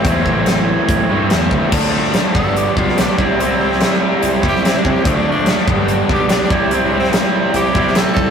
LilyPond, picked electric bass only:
\new Staff \with { instrumentName = "Picked electric bass" } { \clef bass \time 4/4 \key c \mixolydian \tempo 4 = 144 e,8 a,,4. a,8 g,8 e,8 d,8 | d,4. g,,4 b,,4 c,8~ | c,4. r8 c,8 c4 c8 | d,4. g,,4 b,,4 c,8~ |
c,4. r8 c,8 c4 c,8 | }